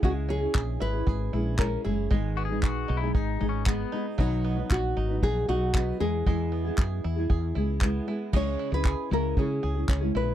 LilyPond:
<<
  \new Staff \with { instrumentName = "Nylon-string guitar" } { \time 4/4 \key cis \dorian \tempo 4 = 116 fis'8 gis'4 b'4. ais'8 gis'8~ | gis'8 r2. r8 | dis'4 fis'4 gis'8 fis'4 gis'8~ | gis'4 r2. |
cis''8. b'8. ais'8 gis'4. b'8 | }
  \new Staff \with { instrumentName = "Five-string banjo" } { \time 4/4 \key cis \dorian <gis gis'>8 cis'8 gis'8 e'8 gis'8 e'8 cis'8 e'8 | <gis gis'>8 b8 gis'8 dis'8 gis'8 dis'8 b8 dis'8 | <fis fis'>8 b8 fis'8 dis'8 fis'8 dis'8 b8 gis8 | <gis gis'>8 b8 gis'8 e'8 gis'8 e'8 b8 e'8 |
<gis gis'>8 e'8 gis'8 e'8 cis'8 gis'8 cis'8 e'8 | }
  \new Staff \with { instrumentName = "Pedal steel guitar" } { \time 4/4 \key cis \dorian r1 | \tuplet 3/2 { r8. fis'16 gis'8 fis'4 e'8 dis'4 cis'8 } b8. r16 | r1 | r1 |
r1 | }
  \new Staff \with { instrumentName = "Nylon-string guitar" } { \time 4/4 \key cis \dorian <cis gis cis' e' gis'>8. <cis' e' gis'>4 <cis' e' gis'>8. <gis cis' e' gis'>8 <gis cis' e' gis'>8 <gis cis' e' gis'>8 | <gis, dis gis b dis' gis'>8. <gis b dis' gis'>4 <gis b dis' gis'>8. <gis b dis' gis'>8 <gis b dis' gis'>8 <gis b dis' gis'>8 | <b, dis fis b dis' b'>8. <fis b dis' b'>4 <fis b dis' b'>8. <fis b dis' b'>8 <fis b dis' b'>8 <gis b e' gis'>8 | <e gis b e' gis'>8. <b e' gis'>4 <b e' gis'>8. <gis b e' gis'>8 <gis b e' gis'>8 <gis b e' gis'>8 |
<cis gis cis' e' gis'>8. <cis' e' gis'>8. <cis gis cis' e' gis'>8 <gis cis' e' gis'>8. <cis' e' gis'>8 <cis gis cis' e' gis'>8. | }
  \new Staff \with { instrumentName = "Fretless electric bass" } { \clef bass \time 4/4 \key cis \dorian cis,4 ais,,8 gis,,8 gis,,8 ais,,4 fis,,8 | gis,,4 ais,,8 b,,8 gis,,8 gis,,4 r8 | b,,4 ais,,8 gis,,8 ais,,8 b,,4 e,8 | e,4 fis,8 e,8 e,8 cis,4 r8 |
cis,8 r16 cis,8 r16 cis,8 cis8 cis,8 cis,8 ais,,8 | }
  \new DrumStaff \with { instrumentName = "Drums" } \drummode { \time 4/4 bd4 <hc bd>4 bd4 <hc bd>4 | bd4 <hc bd>4 bd4 <hc bd>4 | bd4 <hc bd>4 bd4 <hc bd>4 | bd4 <hc bd>4 bd4 <hc bd>4 |
<cymc bd>4 <hc bd>4 bd4 <hc bd>4 | }
>>